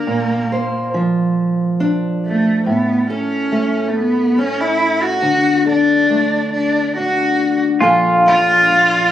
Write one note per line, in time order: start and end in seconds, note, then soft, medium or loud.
0.00 0.91 A#3 medium
0.07 2.60 A#2 medium
0.52 2.61 C5 medium
0.94 2.66 F3 medium
1.80 2.61 D4 medium
2.26 2.64 A3 medium
2.66 5.18 A2 medium
2.66 3.07 B3 medium
3.10 3.90 C#4 medium
3.10 5.66 A4 medium
3.52 6.09 A3 medium
3.88 3.97 A3 medium
3.96 4.41 B3 medium
4.38 5.18 C#4 soft
4.38 4.62 C#4 medium
4.61 5.04 E4 medium
5.03 5.67 F#4 medium
5.22 7.76 D3 medium
5.66 6.49 D4 medium
5.66 7.77 A4 medium
6.10 7.77 A3 medium
6.54 6.93 D4 medium
6.97 7.78 D4 soft
6.97 7.57 F#4 medium
7.81 9.12 A#1 medium
7.81 9.12 A#2 medium
7.81 9.12 F3 medium
7.81 8.25 D4 medium
7.81 9.12 F4 medium
7.81 9.12 A4 medium
7.81 9.12 F5 soft
8.26 8.69 D4 medium
8.26 9.12 F4 medium
8.69 9.12 D4 medium